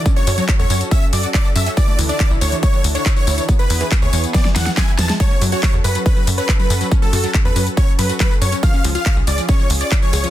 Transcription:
<<
  \new Staff \with { instrumentName = "Supersaw synth" } { \time 4/4 \key fis \minor \tempo 4 = 140 r16 cis''8. r16 cis''8 r16 e''16 r16 d''16 r16 d''16 r16 e''16 r16 | d''8 r16 d''8 r16 cis''16 r16 cis''8 r16 cis''16 r16 cis''8. | r16 b'8. r16 cis''8 r16 d''16 r16 fis''16 r16 gis''16 r16 a''16 r16 | cis''8 r16 cis''8 r16 b'16 r16 b'8 r16 b'16 r16 b'8. |
r16 a'8. r16 b'8 r16 cis''16 r16 b'16 r16 b'16 r16 cis''16 r16 | eis''8 r16 eis''8 r16 d''16 r16 cis''8 r16 d''16 r16 cis''8. | }
  \new Staff \with { instrumentName = "Analog synth pad" } { \time 4/4 \key fis \minor << { <fis' a'>1~ | <fis' a'>1 | gis'1 | <fis' a'>1~ |
<fis' a'>1 | <eis' gis'>1 | } \\ { cis'1 | <d d' e'>1 | b1 | cis'1~ |
cis'1 | cis'1 | } >> }
  \new Staff \with { instrumentName = "Synth pluck" } { \clef bass \time 4/4 \key fis \minor cis'16 fis16 fis'16 fis16 r16 a'16 fis16 r16 cis'16 r16 fis16 fis'16 fis16 a'16 fis16 cis'16 | e16 a16 e16 d'16 e16 e'16 r16 e16 a16 e16 r16 d'16 r16 e16 e'16 e16 | b16 e16 e'16 e16 r16 gis'16 e16 r16 b16 r16 e16 e16 e16 e'16 b16 gis16 | fis16 cis'16 fis16 fis'16 r16 a'16 r16 fis16 cis'16 fis16 r16 cis''16 r16 fis16 a'16 fis16 |
cis'16 fis16 fis'16 fis16 r16 a'16 fis16 r16 cis'16 r16 fis16 fis'16 fis16 a'16 fis16 cis'16 | eis16 cis'16 eis16 eis'16 r16 gis'16 r16 eis16 cis'16 eis16 r16 cis''16 r16 eis16 gis'16 eis16 | }
  \new Staff \with { instrumentName = "Analog synth bass" } { \clef bass \time 4/4 \key fis \minor r8 fis,16 r8 e,16 fis,16 r8. fis,16 r8. fis,16 r16 | r8 d,16 r8 a,,16 d,16 r8. d,16 r8. d,16 r16 | r8 e,16 r8 d,16 e,16 r8. e,16 r8. e,16 r16 | r8 fis,16 r8 e,16 fis,16 r8. fis,16 r8. fis,16 r16 |
r8 fis,16 r8 e,16 fis,16 r8. fis,16 r8. fis,16 r16 | r8 cis,16 r8 b,,16 cis,16 r8. cis,16 r8. cis,16 r16 | }
  \new DrumStaff \with { instrumentName = "Drums" } \drummode { \time 4/4 <hh bd tamb>16 tamb16 <hho tamb>16 <hh tamb>16 <hc hh bd tamb>16 tamb16 <hho tamb>16 <hh tamb>16 <hh bd tamb>16 tamb16 <hho tamb>16 <hh tamb>16 <hc hh bd tamb>16 tamb16 <hho tamb>16 <hh tamb>16 | <hh bd tamb>16 tamb16 <hho tamb>16 <hh tamb>16 <hc hh bd tamb>16 tamb16 <hho tamb>16 <hh tamb>16 <hh bd tamb>16 tamb16 <hho tamb>16 <hh tamb>16 <hc hh bd tamb>16 tamb16 <hho tamb>16 <hh tamb>16 | <hh bd tamb>16 tamb16 <hho tamb>16 <hh tamb>16 <hc hh bd tamb>16 tamb16 <hho tamb>16 <hh tamb>16 <hh bd sn tamb>16 <sn tamb>16 <hho sn tamb>16 <hh sn tamb>16 <hc hh bd sn tamb>16 tamb16 <hho sn tamb>16 <hh sn tamb>16 | <hh bd tamb>16 tamb16 <hho tamb>16 <hh tamb>16 <hc hh bd tamb>16 tamb16 <hho tamb>16 <hh tamb>16 <hh bd tamb>16 tamb16 <hho tamb>16 <hh tamb>16 <hc hh bd tamb>16 tamb16 <hho tamb>16 <hh tamb>16 |
<hh bd tamb>16 tamb16 <hho tamb>16 <hh tamb>16 <hc hh bd tamb>16 tamb16 <hho tamb>16 <hh tamb>16 <hh bd tamb>16 tamb16 <hho tamb>16 <hh tamb>16 <hc hh bd tamb>16 tamb16 <hho tamb>16 <hh tamb>16 | <hh bd tamb>16 tamb16 <hho tamb>16 <hh tamb>16 <hc hh bd tamb>16 tamb16 <hho tamb>16 <hh tamb>16 <hh bd tamb>16 tamb16 <hho tamb>16 <hh tamb>16 <hc hh bd tamb>16 tamb16 <hho tamb>16 <hh tamb>16 | }
>>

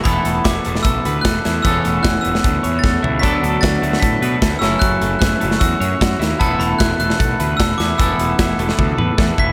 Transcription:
<<
  \new Staff \with { instrumentName = "Glockenspiel" } { \time 4/4 \key e \mixolydian \tempo 4 = 151 b''4 d'''4 e'''4 fis'''4 | e'''4 fis'''8 e'''4. a'''4 | b'''4 a'''4 b'''4. e'''8 | fis'''4 fis'''4 e'''4. r8 |
a''8 b''8 fis'''8 fis'''4. e'''8 d'''8 | e'''2. r8 b'''8 | }
  \new Staff \with { instrumentName = "Clean electric guitar" } { \time 4/4 \key e \mixolydian e8 a8 e'8 a8 a'8 b'8 a'8 e'8 | e8 a8 e'8 b8 a'8 cis''8 a'8 e'8 | d8 fis8 d'8 a8 a'8 b'8 a'8 fis8 | fis8 a8 e'8 a8 fis'8 cis''8 fis'8 e'8 |
e8 a8 e'8 a8 a'8 b'8 a'8 e'8 | e8 a8 e'8 a8 a'8 b'8 a'8 e'8 | }
  \new Staff \with { instrumentName = "Clean electric guitar" } { \time 4/4 \key e \mixolydian <b e' a'>1 | <e b cis' a'>1 | <fis b d' a'>2.~ <fis b d' a'>8 <cis' e' a'>8~ | <cis' e' a'>2.~ <cis' e' a'>8 r8 |
<b e' a'>1 | <b e' a'>1 | }
  \new Staff \with { instrumentName = "Picked electric bass" } { \clef bass \time 4/4 \key e \mixolydian e,,8 e,,8 e,,8 e,,8 b,,8 d,8 e,,8 e,8 | e,,8 e,,8 e,,8 e,,8 d,8 e,8 e,8 cis,8 | d,8 d,8 d,8 d,8 a,8 b,8 d,8 fis,,8 | fis,,8 fis,,8 fis,,8 fis,,8 e,8 fis,8 fis,8 dis,8 |
e,,8 e,,8 e,,8 e,,8 b,,8 d,8 e,,8 e,8 | e,,8 e,,8 e,,8 e,,8 d,8 e,8 e,8 e,,8 | }
  \new DrumStaff \with { instrumentName = "Drums" } \drummode { \time 4/4 <hh bd>8 hh8 <hh bd sn>8 hh16 sn16 <hh bd>8 hh8 <hh bd sn>8 <hh sn>8 | <hh bd>8 hh8 <hh bd sn>8 hh16 sn16 <hh bd>8 hh8 <bd sn>8 tomfh8 | <hh bd>8 hh8 <hh bd sn>8 hh16 sn16 <hh bd>8 hh8 <hh bd sn>8 <hh sn>8 | <hh bd>8 hh8 <hh bd sn>8 hh16 sn16 <hh bd>8 hh8 <hh bd sn>8 <hh sn>8 |
<hh bd>8 hh8 <hh bd sn>8 hh16 sn16 <hh bd>8 hh8 <hh bd sn>8 <hh sn>8 | <hh bd>8 hh8 <hh bd sn>8 hh16 sn16 <bd tommh>8 toml8 <bd sn>8 bd8 | }
>>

